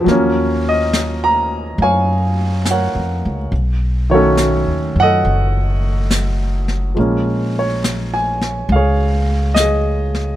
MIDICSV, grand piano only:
0, 0, Header, 1, 2, 480
1, 0, Start_track
1, 0, Tempo, 863309
1, 33, Time_signature, 4, 2, 24, 8
1, 5761, End_track
2, 0, Start_track
2, 0, Title_t, "Grand piano"
2, 0, Program_c, 0, 0
2, 0, Control_c, 0, 64, 127
2, 3, Note_on_c, 0, 53, 56
2, 23, Note_on_c, 0, 54, 53
2, 41, Control_c, 0, 64, 0
2, 45, Note_on_c, 0, 58, 55
2, 63, Note_on_c, 0, 61, 61
2, 152, Control_c, 0, 64, 127
2, 382, Note_on_c, 0, 75, 70
2, 688, Note_on_c, 0, 82, 80
2, 696, Note_off_c, 0, 75, 0
2, 1009, Note_off_c, 0, 82, 0
2, 1011, Note_on_c, 0, 77, 50
2, 1013, Note_on_c, 0, 80, 78
2, 1021, Note_on_c, 0, 73, 56
2, 1495, Note_off_c, 0, 80, 0
2, 1501, Note_off_c, 0, 73, 0
2, 1505, Note_on_c, 0, 78, 62
2, 1509, Note_on_c, 0, 73, 40
2, 1517, Note_on_c, 0, 70, 41
2, 1869, Note_off_c, 0, 78, 0
2, 1934, Note_off_c, 0, 53, 0
2, 1936, Note_off_c, 0, 77, 0
2, 1943, Note_off_c, 0, 54, 0
2, 1946, Note_off_c, 0, 73, 0
2, 1950, Note_off_c, 0, 70, 0
2, 1955, Note_off_c, 0, 58, 0
2, 1956, Control_c, 0, 64, 0
2, 1964, Note_off_c, 0, 61, 0
2, 2057, Control_c, 0, 64, 127
2, 2278, Note_on_c, 0, 51, 54
2, 2287, Note_on_c, 0, 73, 69
2, 2288, Note_on_c, 0, 54, 46
2, 2296, Note_on_c, 0, 57, 43
2, 2302, Note_on_c, 0, 66, 48
2, 2302, Note_on_c, 0, 69, 50
2, 2308, Note_on_c, 0, 61, 55
2, 2745, Note_off_c, 0, 73, 0
2, 2779, Note_on_c, 0, 78, 98
2, 2791, Note_off_c, 0, 69, 0
2, 2794, Note_on_c, 0, 75, 62
2, 2800, Note_on_c, 0, 69, 58
2, 3222, Note_off_c, 0, 66, 0
2, 3708, Note_off_c, 0, 78, 0
2, 3715, Note_off_c, 0, 75, 0
2, 3718, Note_off_c, 0, 69, 0
2, 3862, Note_on_c, 0, 53, 40
2, 3869, Note_off_c, 0, 51, 0
2, 3871, Note_on_c, 0, 56, 41
2, 3874, Note_off_c, 0, 54, 0
2, 3876, Control_c, 0, 64, 0
2, 3878, Note_off_c, 0, 57, 0
2, 3880, Note_on_c, 0, 58, 36
2, 3882, Note_off_c, 0, 61, 0
2, 3890, Note_on_c, 0, 61, 45
2, 3974, Control_c, 0, 64, 127
2, 4220, Note_on_c, 0, 73, 59
2, 4523, Note_on_c, 0, 80, 62
2, 4535, Note_off_c, 0, 73, 0
2, 4847, Note_off_c, 0, 80, 0
2, 4849, Note_on_c, 0, 77, 65
2, 4868, Note_on_c, 0, 68, 49
2, 4870, Note_on_c, 0, 73, 50
2, 5307, Note_on_c, 0, 75, 69
2, 5329, Note_off_c, 0, 68, 0
2, 5334, Note_off_c, 0, 77, 0
2, 5338, Note_on_c, 0, 68, 46
2, 5691, Note_off_c, 0, 75, 0
2, 5761, Note_off_c, 0, 53, 0
2, 5761, Note_off_c, 0, 56, 0
2, 5761, Note_off_c, 0, 58, 0
2, 5761, Note_off_c, 0, 61, 0
2, 5761, Note_off_c, 0, 68, 0
2, 5761, Note_off_c, 0, 73, 0
2, 5761, End_track
0, 0, End_of_file